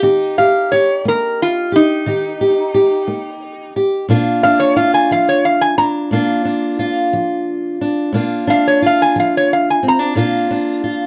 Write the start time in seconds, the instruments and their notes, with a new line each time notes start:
Already playing: resonator guitar played with a steel bar D#5
0.02 steel-string acoustic guitar D#3 D#4 G4
0.38 steel-string acoustic guitar G4, resonator guitar played with a steel bar F5
0.72 steel-string acoustic guitar G4, resonator guitar played with a steel bar C#5
1.05 steel-string acoustic guitar A#3, resonator guitar played with a steel bar A#4
1.42 resonator guitar played with a steel bar F4
1.72 resonator guitar played with a steel bar D#4, steel-string acoustic guitar G4
2.06 steel-string acoustic guitar D#3 D#4 G4
2.41 steel-string acoustic guitar G4
2.74 steel-string acoustic guitar G4
3.08 steel-string acoustic guitar A#3
3.76 steel-string acoustic guitar G4
4.08 steel-string acoustic guitar A#2 A#3 D4 F4
4.43 steel-string acoustic guitar D4, resonator guitar played with a steel bar F5
4.60 resonator guitar played with a steel bar C#5
4.76 steel-string acoustic guitar F4, resonator guitar played with a steel bar F5
4.94 resonator guitar played with a steel bar G#5
5.11 steel-string acoustic guitar F3, resonator guitar played with a steel bar F5
5.29 resonator guitar played with a steel bar C#5
5.45 resonator guitar played with a steel bar F5
5.61 resonator guitar played with a steel bar G#5
5.78 steel-string acoustic guitar D4, resonator guitar played with a steel bar A#5
6.11 steel-string acoustic guitar A#2 A#3 D4 F4
6.45 steel-string acoustic guitar D4
6.79 steel-string acoustic guitar F4
7.13 steel-string acoustic guitar F3
7.81 steel-string acoustic guitar D4
8.13 steel-string acoustic guitar A#2 A#3 D4 F4
8.47 steel-string acoustic guitar D4, resonator guitar played with a steel bar F5
8.68 resonator guitar played with a steel bar C#5
8.82 steel-string acoustic guitar F4
8.86 resonator guitar played with a steel bar F5
9.02 resonator guitar played with a steel bar G#5
9.16 steel-string acoustic guitar F3
9.20 resonator guitar played with a steel bar F5
9.37 resonator guitar played with a steel bar C#5
9.53 resonator guitar played with a steel bar F5
9.70 resonator guitar played with a steel bar G#5
9.83 steel-string acoustic guitar C4
9.88 resonator guitar played with a steel bar A#5
9.99 steel-string acoustic guitar D4
10.15 steel-string acoustic guitar A#2 A#3 D4 F4
10.51 steel-string acoustic guitar D4
10.84 steel-string acoustic guitar F4